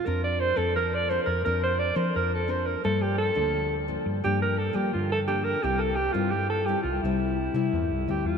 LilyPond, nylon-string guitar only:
\new Staff \with { instrumentName = "Nylon-string guitar" } { \time 4/4 \key g \dorian \tempo 4 = 86 << { <c' d' bes'>8. <c' d' bes'>8. <c' d' bes'>8 <c' d' bes'>8. <c' d' bes'>8. <c' d' bes'>8 | <f bes d'>8. <f bes d'>8. <f bes d'>8 <f bes d'>8 r16 <f bes d'>8. <f bes d'>8 | <g c' e'>8 r16 <g c' e'>8. <g c' e'>16 r16 <g c' e'>8 r16 <g c' e'>8. <g c' e'>8 | } \\ { f4 f4 f4 f4 | g,4 d4 g,4 d4 | c4 g,4 c4 g,4 | } >> }